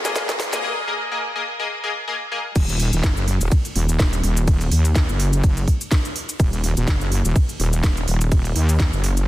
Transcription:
0.00 0.14 G#1 loud
0.05 0.14 A#3 medium
0.05 0.14 G#4 medium
0.05 0.14 D#5 loud
0.05 snare medium
0.05 closed hi-hat medium
0.05 cabasa medium
0.16 0.38 G#1 loud
0.16 0.23 A#3 medium
0.16 0.23 G#4 medium
0.16 0.23 D#5 loud
0.16 kick loud
0.16 snare loud
0.16 closed hi-hat medium
0.16 cabasa medium
0.29 snare loud
0.29 closed hi-hat soft
0.29 cabasa soft
0.40 0.64 G#1 loud
0.40 snare loud
0.40 open hi-hat loud
0.53 0.62 A#3 loud
0.53 0.62 G#4 medium
0.53 0.62 D#5 loud
0.53 snare medium
0.53 closed hi-hat medium
0.53 cabasa medium
0.64 0.70 A#3 loud
0.64 0.70 G#4 medium
0.64 0.70 D#5 loud
0.88 0.95 A#3 loud
0.88 0.94 G#4 medium
0.88 0.94 D#5 loud
1.12 1.18 A#3 loud
1.12 1.18 G#4 medium
1.12 1.18 D#5 loud
1.36 1.43 A#3 medium
1.36 1.43 G#4 medium
1.36 1.43 D#5 loud
1.60 1.67 A#3 loud
1.60 1.67 G#4 medium
1.60 1.67 D#5 loud
1.84 1.91 A#3 loud
1.84 1.91 G#4 medium
1.84 1.91 D#5 loud
2.08 2.15 A#3 medium
2.08 2.15 G#4 medium
2.08 2.15 D#5 loud
2.32 2.39 A#3 loud
2.32 2.39 G#4 medium
2.32 2.39 D#5 loud
2.56 2.91 D#1 loud
2.56 kick loud
2.56 closed hi-hat medium
2.56 crash loud
2.56 ride medium
2.56 cabasa medium
2.69 closed hi-hat soft
2.69 cabasa soft
2.80 open hi-hat loud
2.93 3.02 D#1 loud
2.93 closed hi-hat medium
2.93 cabasa medium
3.04 3.39 F#1 loud
3.04 kick loud
3.04 snare loud
3.04 closed hi-hat medium
3.04 ride medium
3.04 cabasa medium
3.17 cabasa soft
3.28 open hi-hat loud
3.41 3.50 D#1 loud
3.41 closed hi-hat medium
3.41 cabasa medium
3.52 kick loud
3.52 closed hi-hat medium
3.52 ride medium
3.52 cabasa medium
3.65 closed hi-hat soft
3.65 cabasa soft
3.76 3.98 D#1 loud
3.76 open hi-hat loud
3.89 closed hi-hat medium
3.89 cabasa medium
3.99 4.22 D#1 loud
3.99 kick loud
3.99 snare loud
3.99 closed hi-hat medium
3.99 ride medium
3.99 cabasa medium
4.13 closed hi-hat soft
4.13 cabasa soft
4.24 4.70 D#1 loud
4.24 open hi-hat loud
4.37 closed hi-hat medium
4.37 cabasa medium
4.48 kick loud
4.48 closed hi-hat medium
4.48 ride medium
4.48 cabasa medium
4.61 closed hi-hat soft
4.61 cabasa soft
4.72 5.07 D#2 loud
4.72 open hi-hat loud
4.85 closed hi-hat medium
4.85 cabasa medium
4.95 kick loud
4.95 snare loud
4.95 closed hi-hat medium
4.95 ride medium
4.95 cabasa medium
5.09 5.42 F#1 loud
5.09 cabasa soft
5.20 open hi-hat loud
5.33 closed hi-hat medium
5.33 cabasa medium
5.44 5.66 F#1 loud
5.44 kick loud
5.44 closed hi-hat medium
5.44 ride medium
5.44 cabasa medium
5.57 closed hi-hat soft
5.57 cabasa soft
5.68 kick medium
5.68 open hi-hat loud
5.81 closed hi-hat medium
5.81 cabasa medium
5.92 kick loud
5.92 snare loud
5.92 closed hi-hat medium
5.92 ride medium
5.92 cabasa medium
6.05 closed hi-hat soft
6.05 cabasa soft
6.16 open hi-hat loud
6.29 closed hi-hat medium
6.29 cabasa medium
6.40 6.75 D#1 loud
6.40 kick loud
6.40 closed hi-hat medium
6.40 ride medium
6.40 cabasa medium
6.53 closed hi-hat soft
6.53 cabasa soft
6.64 open hi-hat loud
6.77 6.86 D#1 loud
6.77 closed hi-hat soft
6.77 cabasa medium
6.88 7.23 F#1 loud
6.88 kick loud
6.88 snare loud
6.88 closed hi-hat medium
6.88 ride medium
6.88 cabasa medium
7.01 cabasa soft
7.12 open hi-hat loud
7.25 7.34 D#1 loud
7.25 closed hi-hat medium
7.25 cabasa medium
7.36 kick loud
7.36 closed hi-hat medium
7.36 ride medium
7.36 cabasa medium
7.49 closed hi-hat soft
7.49 cabasa soft
7.60 7.82 D#1 loud
7.60 open hi-hat loud
7.73 closed hi-hat medium
7.73 cabasa medium
7.84 8.06 D#1 loud
7.84 kick loud
7.84 snare loud
7.84 closed hi-hat medium
7.84 ride medium
7.84 cabasa medium
7.97 closed hi-hat soft
7.97 cabasa soft
8.08 8.54 D#1 loud
8.08 open hi-hat loud
8.21 closed hi-hat medium
8.21 cabasa medium
8.32 kick loud
8.32 closed hi-hat medium
8.32 ride medium
8.32 cabasa medium
8.45 closed hi-hat soft
8.45 cabasa soft
8.56 8.91 D#2 loud
8.56 open hi-hat loud
8.69 closed hi-hat soft
8.69 cabasa medium
8.80 kick loud
8.80 snare loud
8.80 closed hi-hat medium
8.80 ride medium
8.80 cabasa medium
8.93 9.26 F#1 loud
8.93 cabasa soft
9.04 open hi-hat loud
9.17 closed hi-hat medium
9.17 cabasa medium

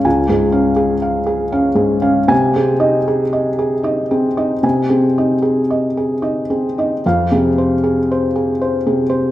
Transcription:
0.00 0.19 C#4 soft
0.00 0.20 F5 soft
0.05 2.27 C#2 soft
0.05 0.45 G#5 soft
0.29 0.70 G#2 soft
0.29 0.70 G#4 soft
0.52 0.94 C#4 soft
0.52 0.94 F5 soft
0.76 1.19 G#4 soft
1.02 1.44 F5 soft
1.26 1.68 G#4 soft
1.52 1.94 C#4 soft
1.52 1.94 F5 soft
1.75 2.18 G#2 soft
1.75 2.18 G#4 soft
2.02 2.29 C#4 soft
2.02 2.29 F5 soft
2.28 4.58 C3 medium
2.28 2.71 G#5 medium
2.56 2.97 C4 soft
2.56 2.97 G#4 soft
2.80 3.22 D#4 soft
2.80 3.22 D#5 soft
3.08 3.48 G#4 soft
3.33 3.74 D#5 soft
3.59 4.00 G#4 soft
3.83 4.26 D#4 soft
3.83 4.26 D#5 soft
4.11 4.53 C4 soft
4.11 4.53 G#4 soft
4.37 4.80 D#4 soft
4.37 4.80 D#5 soft
4.63 6.99 C3 soft
4.63 5.06 G#5 soft
4.90 5.33 C4 soft
4.90 5.33 G#4 soft
5.18 5.60 D#4 soft
5.18 5.60 D#5 soft
5.42 5.86 G#4 soft
5.70 6.13 D#5 soft
5.97 6.40 G#4 soft
6.22 6.65 D#4 soft
6.22 6.65 D#5 soft
6.50 6.93 C4 soft
6.50 6.93 G#4 soft
6.78 7.04 D#4 soft
6.78 7.04 D#5 soft
7.06 9.31 F2 soft
7.06 7.47 F5 medium
7.32 7.73 C3 soft
7.32 7.73 G#4 soft
7.58 7.99 C5 soft
7.84 8.25 G#4 soft
8.11 8.51 C5 soft
8.36 8.76 G#4 soft
8.61 9.02 C5 soft
8.86 9.27 C3 soft
8.86 9.27 G#4 soft
9.10 9.31 C5 soft

